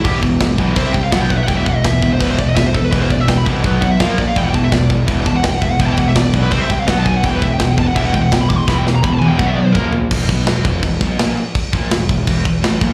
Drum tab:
CC |xxxxxxxx|xxxxxxxx|xxxxxxxx|xxxxxxxx|
SD |--o---o-|--o---o-|--o---o-|--o---o-|
T1 |--------|--------|--------|--------|
T2 |--------|--------|--------|--------|
FT |--------|--------|--------|--------|
BD |oooooooo|oooooooo|oooooooo|oooooooo|

CC |xxxxxxxx|xxxxxxxx|--------|xxxxxxxx|
SD |--o---o-|--o---o-|oo------|--o---o-|
T1 |--------|--------|---o----|--------|
T2 |--------|--------|----o---|--------|
FT |--------|--------|------oo|--------|
BD |oooooooo|oooooooo|o-o-o-o-|oo-ooo--|

CC |xxxxxxxx|
SD |--o---o-|
T1 |--------|
T2 |--------|
FT |--------|
BD |oo-ooo-o|